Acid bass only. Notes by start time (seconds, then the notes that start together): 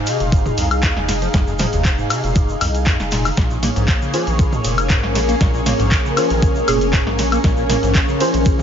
0.07 C3
0.20 A#2
0.32 G#2
0.46 F2
0.58 F2
0.83 D#2
1.08 C3
1.22 F3
1.34 F2
1.47 F2
1.59 F3
1.73 D#2
1.85 C3
1.98 G#2
2.10 C3
2.24 A#2
2.36 G#2
2.49 F2
2.61 F2
2.87 F2
3.12 A#2
3.25 F3
3.37 A#2
3.51 A#2
3.63 A#3
3.76 G#2
3.88 F3
4.01 C#3
4.14 F3
4.27 D#3
4.39 C#3
4.52 A#2
4.64 A#2
4.90 G#2
5.15 F3
5.29 A#3
5.41 A#2
5.54 A#2
5.66 A#3
5.79 G#2
5.92 F3
6.05 C#3
6.17 F3
6.30 D#3
6.42 C#3
6.56 A#2
6.68 A#2
6.93 G#2
7.19 F3
7.32 A#3
7.44 A#2
7.57 A#2
7.70 A#3
7.83 G#2
7.95 F3
8.08 C#3
8.20 F3
8.34 D#3
8.46 C#3
8.59 A#2